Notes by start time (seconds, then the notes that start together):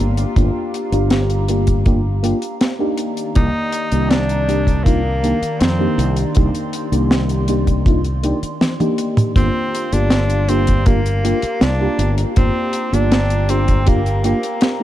Already playing: A#3 D4 F4 G4 F5 A#5
0.00 G1
0.17 closed hi-hat
0.36 G1 A#3 D4 F4 G4, kick, closed hi-hat
0.74 closed hi-hat
0.92 G1 A#3 D4 F4 G4, closed hi-hat
1.10 snare, closed hi-hat
1.30 closed hi-hat
1.49 A#3 D4 F4 G4, closed hi-hat
1.67 kick, closed hi-hat
1.86 A#3 D4 F4 G4, kick, closed hi-hat
2.23 A#3 D4 F4 G4, closed hi-hat
2.42 closed hi-hat
2.61 snare, closed hi-hat
2.79 A#3 D4 D#4 G4
2.98 D#3 D5 A#5, closed hi-hat
3.17 closed hi-hat
3.35 C2 A#3 D#4 G4 D5, kick, closed hi-hat
3.72 closed hi-hat
3.92 C2 D#3 A#3 D4 G4, closed hi-hat
4.10 D4, snare, closed hi-hat
4.29 closed hi-hat
4.48 D#3 A#3 D4 G4, closed hi-hat
4.67 kick, closed hi-hat
4.84 A#3 D4 D#4 F4, kick, closed hi-hat
5.23 A#3 D4 D#4 G4, closed hi-hat
5.42 muted fretless electric bass stroke, closed hi-hat
5.61 F2 C4, snare, closed hi-hat
5.79 A#3 D4 D#4 G4
5.98 C2 C6, closed hi-hat
6.16 closed hi-hat
6.35 C2 A#3 D4 D#4 G4, kick, closed hi-hat
6.55 closed hi-hat
6.73 closed hi-hat
6.92 C2 A#3 D4 D#4 G4, closed hi-hat
7.11 snare, closed hi-hat
7.29 closed hi-hat
7.48 A#3 D4 D#4 G4, closed hi-hat
7.67 kick, closed hi-hat
7.86 A#3 D4 D#4 F4, kick, closed hi-hat
8.04 closed hi-hat
8.23 A#3 D4 D#4 G4, closed hi-hat
8.43 muted fretless electric bass stroke, closed hi-hat
8.61 snare, closed hi-hat, high tom
8.80 A#3 D4 D#4 G4, closed hi-hat, high tom
8.98 closed hi-hat
9.17 closed hi-hat, mid tom
9.35 G1 A#3 C4 D4 F4 G4 F5 A#5, kick, closed hi-hat
9.75 closed hi-hat
9.92 G1 A#3 D4 F4 G4, closed hi-hat
10.10 snare, closed hi-hat
10.30 closed hi-hat
10.48 A#3 C4 D4 F4 G4, closed hi-hat
10.67 kick, closed hi-hat
10.86 A#3 D4 F4 G4, kick, closed hi-hat
11.06 closed hi-hat
11.24 A#3 D4 F4 G4, closed hi-hat
11.42 muted fretless electric bass stroke, closed hi-hat
11.61 C2 D4, snare, closed hi-hat
11.80 A#3 D4 F4 G4
11.99 G1, closed hi-hat
12.18 closed hi-hat
12.36 G1 A#3 C4 D4 F4 G4 G5, kick, closed hi-hat
12.73 closed hi-hat
12.93 G1 A#3 D4 F4 G4, closed hi-hat
13.12 snare, closed hi-hat
13.30 closed hi-hat
13.49 A#3 C4 D4 F4 G4, closed hi-hat
13.68 kick, closed hi-hat
13.86 A#3 D4 F4 G4, kick, closed hi-hat
14.06 closed hi-hat
14.24 A#3 D4 F4 G4, closed hi-hat
14.43 closed hi-hat
14.61 snare, closed hi-hat
14.80 A#3